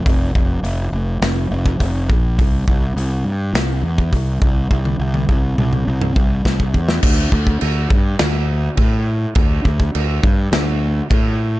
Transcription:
0.06 F1, kick, open hi-hat
0.35 F1, kick
0.63 F1, open hi-hat
0.92 F1
1.21 F1, snare, open hi-hat
1.51 F1
1.66 kick
1.80 F1, kick, open hi-hat
2.10 A#1, kick
2.39 C2, kick, open hi-hat
2.68 C2, kick
2.96 C2, open hi-hat
3.24 G2
3.53 C2, snare, open hi-hat
3.82 E2
3.98 kick
4.13 C2, kick, open hi-hat
4.42 C2, kick
4.71 C2, kick
4.85 high tom
4.99 C2
5.14 high tom
5.29 C2, kick
5.58 C2, mid tom
5.73 mid tom
5.87 C2
6.01 mid tom
6.16 C2, kick
6.45 C2, kick, snare
6.60 kick
6.74 E2, kick
6.89 snare
7.03 D2, kick, crash, china
7.32 D2, kick
7.47 kick
7.61 D2, china
7.90 G2, kick
8.19 D2, snare, china
8.77 A2, kick, china
9.35 D2, kick, china
9.65 D2, kick
9.80 kick
9.95 D2, china
10.23 G2, kick
10.52 D2, snare, china
11.10 A2, kick, china

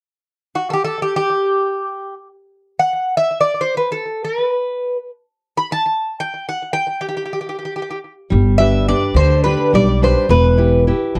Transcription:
0.55 F#4
0.70 G4 A4
0.85 A4
1.02 G4
1.16 G4
2.79 F#5
3.17 E5
3.41 D5
3.61 C5
3.77 B4
3.92 A4
4.25 B4
5.57 B5
5.72 A5
6.20 G5
6.49 F#5
6.73 G5
7.01 G4
7.09 G4
7.17 G4
7.25 G4
7.33 G4
7.41 G4
7.49 G4
7.59 G4
7.65 G4
7.76 G4
7.82 G4
7.91 G4
8.30 G1 G3
8.58 D4 G4 B4 E5
8.88 D4 G4 B4 D5
9.14 D2 D3 C5
9.44 D4 G4 B4
9.73 B1 G3 D5
10.02 D4 G4 B4 C5
10.29 E1 E3 B4
10.58 E4 G4 B4
10.87 E4 G4 B4
11.15 B1 B2

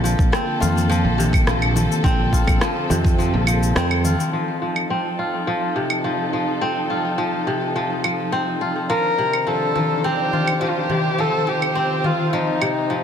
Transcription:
Already playing: A#1 D3 A#3 C4 F4 A4
0.04 F3, darbuka ka, cabasa
0.19 A#1, kick, cabasa
0.32 C4, cross-stick, cabasa
0.60 F2 F4, darbuka tek, darbuka dum, cabasa
0.78 cabasa
0.90 F3, cabasa
1.05 A#1
1.18 C3, darbuka ka, darbuka dum, cabasa
1.33 kick, cabasa, claves
1.47 A#1 F3, cross-stick, cabasa
1.62 claves
1.76 F3, darbuka dum, cabasa
1.92 cabasa
2.04 A#1 C4, kick, darbuka ka, cabasa
2.32 F4, kick, darbuka ka, cabasa
2.48 A#1, kick, cabasa, claves
2.61 F3, cross-stick, cabasa
2.89 F2 C3, darbuka tek, darbuka dum, cabasa
3.05 kick, cabasa
3.19 F3, cabasa
3.34 A#1, darbuka tek
3.47 F3, cabasa, claves
3.62 darbuka tek, cabasa
3.75 F2 C4, cross-stick, cabasa
3.91 claves
4.04 F4, darbuka dum, cabasa
4.19 darbuka tek, cabasa
4.32 F3 D#4 A4
4.62 F3
4.76 claves
4.90 C4
5.19 F4
5.47 F3
5.76 C3
5.90 claves
6.04 F3
6.33 F3
6.61 C4
6.90 F4
7.18 F3
7.47 C3
7.76 F3
8.04 F3, claves
8.32 C4
8.61 F4
8.89 D#3 F3 D4 A#4 C5
9.18 C3, darbuka ka
9.33 claves
9.47 F3 A4
9.75 F3, darbuka tek, darbuka dum
10.04 C4 G4
10.32 F4, darbuka ka, darbuka dum
10.47 darbuka tek, claves
10.61 F3 G4
10.69 F4
10.78 G4
10.89 C3, darbuka dum
11.18 F3 C4 A4, darbuka ka
11.47 F3 G4, darbuka ka
11.62 claves
11.75 C4
12.04 F4, darbuka tek, darbuka dum
12.33 F3 D#4
12.47 darbuka tek
12.61 C3, claves
12.90 F3

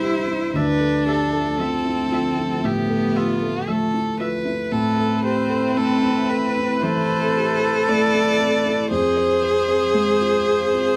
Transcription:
Already playing: G2 G3 E4 B4 C5 E5
0.01 G4 E5
0.27 E4
0.54 D2 F3 A3 D4 B4 E5
0.80 A4
1.06 G4 A4 E5
1.33 A4
1.59 F3 C4 E5
1.85 E4
2.11 F4 E5
2.37 E4
2.64 A2 B3 G4 E5
2.90 A4
3.16 F4 G4 E5
3.42 A4
3.68 F3 A3 A4 E5
3.94 E4
4.20 F4 B4 E5
4.45 E4
4.72 A2 C4 E4 A4 B4 E5
4.98 A4
5.23 G4 C5
5.50 A4
5.76 A3 A4
6.03 E4
6.30 A4 B4
6.57 E4
6.82 E3 A4 C5
7.09 A4
7.36 G4
7.62 A4
7.88 A3 D5
8.14 E4
8.40 A4
8.66 E4
8.89 F2 C4 G#4 C5 F5
9.17 C5
9.42 B4
9.68 C5
9.94 G#3
10.21 F4
10.48 G#4
10.74 F4

